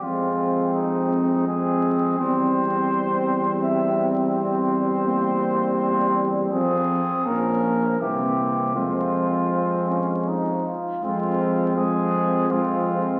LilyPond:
<<
  \new Staff \with { instrumentName = "Trumpet" } { \time 3/4 \key f \minor \tempo 4 = 82 f'4 ees'4 aes'4 | c''2 e''8 r8 | c''2 c''8 r8 | aes'4 bes'4 g'4 |
f'2 r4 | f'4 aes'4 f'4 | }
  \new Staff \with { instrumentName = "Flugelhorn" } { \time 3/4 \key f \minor c'2 c'4 | c'2.~ | c'2. | c'4 des'4 c'4 |
c'4 c'8 des'8 ees'8 f'8 | c'4 c'4 c'4 | }
  \new Staff \with { instrumentName = "French horn" } { \time 3/4 \key f \minor c'2 c'4 | c'2.~ | c'4 bes2 | c'4 bes4 bes4 |
aes2~ aes8 r8 | aes4 aes4 aes4 | }
  \new Staff \with { instrumentName = "Euphonium" } { \clef bass \time 3/4 \key f \minor aes2 aes4 | g2.~ | g2. | f4 f4 e4 |
f2~ f8 r8 | f4 f4 f4 | }
  \new Staff \with { instrumentName = "Tuba" } { \clef bass \time 3/4 \key f \minor f,2. | e,2.~ | e,2. | f,4 bes,,4 c,4 |
f,2~ f,8 r8 | f,2. | }
>>